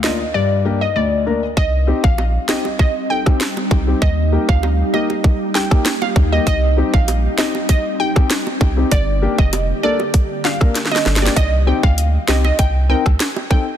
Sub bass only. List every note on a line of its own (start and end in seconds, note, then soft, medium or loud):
1.57 1.93 C2 loud
2.04 2.38 A#1 loud
3.71 3.94 C2 loud
4.02 4.38 D#2 loud
4.49 4.83 D2 medium
6.16 6.39 D#2 loud
6.47 6.82 C2 loud
6.94 7.28 A#1 loud
8.61 8.84 C2 loud
8.92 9.27 G1 loud
9.38 9.73 F1 medium
11.06 11.29 G1 loud
11.37 11.72 C2 loud
11.83 12.18 D2 medium
12.28 12.52 C2 medium
12.59 12.95 C2 loud
13.06 13.17 D2 medium